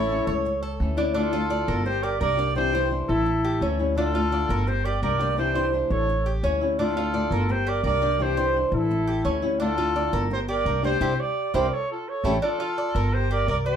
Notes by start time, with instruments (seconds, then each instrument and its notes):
Already playing: upright bass A1, cuban tres E4, flute A4, trumpet C#5
0.10 nylon-string guitar E3 A3 C#4 E4
0.27 upright bass C#2, cuban tres C#5
0.45 muted nylon-string guitar stroke
0.63 cuban tres A4
0.80 upright bass D2, nylon-string guitar E3 A3 C#4 E4
0.97 nylon-string guitar A3 C#4 E4, cuban tres D4
1.14 nylon-string guitar D3 A3 D4 F4, cuban tres D4, flute F4, trumpet A4
1.32 nylon-string guitar A3 D4 F4, cuban tres F4
1.50 nylon-string guitar D3 A3 D4 F4, cuban tres D5
1.68 upright bass G1, cuban tres A#4
1.85 flute G4, trumpet C5, muted nylon-string guitar stroke
2.02 cuban tres G4, flute A#4, trumpet D5
2.19 upright bass C2, nylon-string guitar G3 A#3 D4 G4, flute A#4, cuban tres A#4, trumpet D5
2.37 nylon-string guitar G3 A#3 D4 G4, cuban tres D5
2.54 nylon-string guitar C3 E3 G3 D4 E4, flute G4, trumpet C5
2.73 nylon-string guitar E3 G3 D4 E4, cuban tres C5
2.91 nylon-string guitar E3 G3 D4 E4
3.08 upright bass A1, flute E4, trumpet A4
3.26 muted nylon-string guitar stroke
3.45 cuban tres G4
3.61 upright bass D2, nylon-string guitar E3 G3 C#4 E4, cuban tres C#4
3.79 nylon-string guitar G3 C#4 E4
3.96 nylon-string guitar D3 A3 D4 F4, cuban tres D4, flute F4, trumpet A4
4.14 nylon-string guitar A3 D4 F4, cuban tres F4
4.31 nylon-string guitar D3 A3 D4 F4, cuban tres D5
4.49 upright bass G1, cuban tres A#4
4.67 flute G4, trumpet C5, muted nylon-string guitar stroke
4.84 cuban tres G4, flute A#4, trumpet D5
5.01 upright bass C2, nylon-string guitar G3 A#3 D4 G4, flute A#4, cuban tres A#4, trumpet D5
5.19 nylon-string guitar G3 A#3 D4 G4, cuban tres D5
5.37 nylon-string guitar C3 E3 G3 D4 E4, flute G4, trumpet C5
5.55 nylon-string guitar E3 G3 D4 E4, cuban tres C5
5.73 nylon-string guitar E3 G3 D4 E4
5.90 upright bass A1, flute A4, trumpet C#5
6.09 muted nylon-string guitar stroke
6.26 cuban tres G4
6.43 upright bass D2, nylon-string guitar E3 G3 C#4 E4, cuban tres C#4
6.61 nylon-string guitar G3 C#4 E4
6.79 nylon-string guitar D3 A3 D4 F4, cuban tres D4, flute F4, trumpet A4
6.97 nylon-string guitar A3 D4 F4, cuban tres F4
7.14 nylon-string guitar D3 A3 D4 F4, cuban tres D5
7.31 upright bass G1, cuban tres A#4
7.49 flute G4, trumpet C5, muted nylon-string guitar stroke
7.67 cuban tres G4, flute A#4, trumpet D5
7.83 upright bass C2, nylon-string guitar G3 A#3 D4 G4, cuban tres A#4, flute A#4, trumpet D5
8.02 nylon-string guitar G3 A#3 D4 G4, cuban tres D5
8.19 nylon-string guitar C3 E3 G3 D4 E4, flute G4, trumpet C5
8.37 nylon-string guitar E3 G3 D4 E4, cuban tres C5
8.54 nylon-string guitar E3 G3 D4 E4
8.72 upright bass A1, flute E4, trumpet A4
8.91 muted nylon-string guitar stroke
9.07 cuban tres G4
9.24 upright bass D2, nylon-string guitar E3 G3 C#4 E4, cuban tres C#4
9.42 nylon-string guitar G3 C#4 E4
9.60 nylon-string guitar D3 A3 D4 F4, cuban tres D4, flute F4, trumpet A4
9.78 nylon-string guitar A3 D4 F4, cuban tres F4
9.95 nylon-string guitar D3 A3 D4 F4, cuban tres D5
10.13 upright bass G1, cuban tres A#4
10.30 flute G4, trumpet C5, muted nylon-string guitar stroke
10.48 cuban tres G4, flute A#4, trumpet D5
10.65 upright bass C2, nylon-string guitar G3 A#3 D4 G4, cuban tres A#4
10.83 nylon-string guitar G3 A#3 D4 G4, flute G4, trumpet C5, cuban tres D5
11.00 upright bass C2, nylon-string guitar C4 D4 E4, cuban tres E4 G4 C5
11.19 flute G4, trumpet D5
11.54 upright bass C2, nylon-string guitar C4 D4 E4, cuban tres E4 G4 C5, flute A#4, trumpet D5
11.72 flute A4, trumpet C#5
11.91 flute F4, trumpet A4
12.08 flute A4, trumpet C#5
12.24 upright bass A1, nylon-string guitar G3 A3 C#4, cuban tres E4 G4 A4
12.42 cuban tres D4, flute F4, trumpet A4
12.60 cuban tres F4
12.78 cuban tres D5
12.95 upright bass G1, cuban tres A#4
13.13 flute G4, trumpet C5
13.31 cuban tres G4, flute A#4, trumpet D5
13.48 upright bass C2, cuban tres A#4, flute A#4, trumpet D5
13.66 flute G4, trumpet C5, cuban tres D5